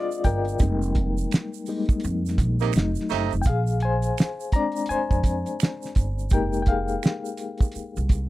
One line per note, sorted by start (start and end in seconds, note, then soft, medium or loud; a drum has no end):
0.00 0.57 G#3 medium
0.00 0.57 C4 medium
0.00 0.62 D4 medium
0.00 0.62 F4 medium
0.00 0.62 G#4 medium
0.00 0.26 A#4 medium
0.00 0.62 C5 loud
0.00 0.62 D5 loud
0.00 0.62 D#5 medium
0.00 0.62 F5 loud
0.11 shaker medium
0.24 0.56 G1 medium
0.24 2.71 A#4 medium
0.24 2.70 G5 loud
0.24 kick medium
0.24 closed hi-hat medium
0.24 shaker soft
0.45 closed hi-hat soft
0.45 shaker soft
0.59 1.22 F1 loud
0.59 1.67 G3 medium
0.59 1.67 G#3 medium
0.59 1.68 A#3 medium
0.59 1.68 D#4 medium
0.59 kick loud
0.59 closed hi-hat medium
0.59 shaker medium
0.82 shaker soft
0.95 kick medium
0.95 closed hi-hat medium
1.17 shaker soft
1.31 finger snap medium
1.31 snare loud
1.31 closed hi-hat medium
1.31 shaker medium
1.54 shaker medium
1.66 2.00 G3 medium
1.66 2.00 G#3 soft
1.66 2.00 A#3 soft
1.66 2.00 D#4 medium
1.66 open hi-hat medium
1.66 shaker soft
1.86 kick loud
1.86 closed hi-hat soft
1.86 shaker soft
2.00 closed hi-hat medium
2.04 2.40 F2 loud
2.04 shaker medium
2.26 snare soft
2.26 shaker soft
2.38 2.70 A#1 loud
2.38 kick loud
2.38 closed hi-hat medium
2.38 shaker soft
2.60 2.72 C3 medium
2.60 2.72 A#3 medium
2.60 2.72 D#4 medium
2.60 closed hi-hat soft
2.60 shaker soft
2.73 2.94 F1 medium
2.73 3.43 F#3 medium
2.73 3.43 A3 medium
2.73 3.43 D#4 medium
2.73 finger snap medium
2.73 closed hi-hat medium
2.73 shaker medium
2.77 snare loud
2.95 shaker medium
3.00 snare soft
3.09 3.30 F#1 medium
3.09 3.33 C3 medium
3.09 3.33 A3 medium
3.09 3.33 D#4 medium
3.09 closed hi-hat medium
3.09 shaker soft
3.14 snare soft
3.31 3.45 F1 medium
3.31 closed hi-hat soft
3.31 shaker soft
3.42 3.46 G5 medium
3.42 closed hi-hat medium
3.42 shaker medium
3.46 4.08 A#1 medium
3.46 3.65 G#4 medium
3.46 3.63 F5 medium
3.46 kick loud
3.67 shaker soft
3.80 4.49 G#5 loud
3.80 closed hi-hat medium
3.85 4.51 C5 medium
4.02 closed hi-hat soft
4.02 shaker medium
4.18 finger snap medium
4.18 snare loud
4.18 closed hi-hat medium
4.18 shaker medium
4.40 shaker medium
4.52 5.57 G#3 medium
4.52 5.57 C4 medium
4.52 5.57 D4 medium
4.52 4.88 D5 medium
4.52 4.90 A#5 loud
4.52 kick medium
4.52 closed hi-hat medium
4.52 shaker medium
4.72 closed hi-hat soft
4.76 shaker soft
4.86 6.28 G#5 loud
4.86 closed hi-hat medium
4.90 6.29 C5 medium
4.90 muted upright bass stroke soft
4.90 shaker medium
5.11 5.42 F2 medium
5.11 kick medium
5.11 shaker soft
5.23 kick loud
5.23 closed hi-hat medium
5.23 shaker soft
5.46 closed hi-hat soft
5.46 shaker soft
5.60 finger snap medium
5.60 snare loud
5.60 closed hi-hat medium
5.60 shaker medium
5.82 snare soft
5.82 shaker medium
5.95 6.32 G1 medium
5.95 kick loud
5.95 closed hi-hat medium
5.95 shaker soft
6.19 shaker soft
6.30 6.94 F1 loud
6.30 8.29 G4 medium
6.30 6.61 G5 medium
6.30 kick loud
6.30 closed hi-hat medium
6.30 shaker medium
6.34 8.29 G#3 medium
6.34 8.29 A#3 soft
6.34 8.29 D#4 medium
6.34 6.61 A#4 medium
6.53 shaker soft
6.62 6.67 G5 medium
6.62 closed hi-hat medium
6.67 7.72 G#4 medium
6.67 7.71 F5 medium
6.67 kick loud
6.88 shaker soft
7.03 finger snap medium
7.03 snare loud
7.03 closed hi-hat medium
7.03 shaker medium
7.25 shaker medium
7.37 closed hi-hat medium
7.37 shaker soft
7.58 kick loud
7.58 closed hi-hat soft
7.58 shaker soft
7.72 muted upright bass stroke soft
7.72 closed hi-hat medium
7.72 shaker medium
7.97 8.28 C2 medium
7.97 shaker soft
8.09 kick loud
8.09 closed hi-hat medium
8.09 shaker soft